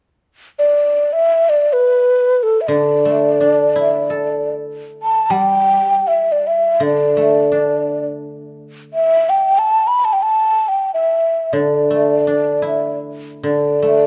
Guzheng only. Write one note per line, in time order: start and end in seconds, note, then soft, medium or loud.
2.68 4.79 D3 soft
3.05 4.45 A3 soft
3.40 4.80 D4 soft
3.76 5.15 E4 soft
4.10 5.50 A4 soft
5.30 7.39 G3 soft
6.80 8.90 D3 soft
7.17 8.55 A3 soft
7.52 8.91 D4 soft
11.53 13.42 D3 soft
11.90 13.32 A3 soft
12.27 13.68 D4 soft
12.62 14.03 E4 soft
13.43 14.07 D3 soft
13.82 14.07 A3 soft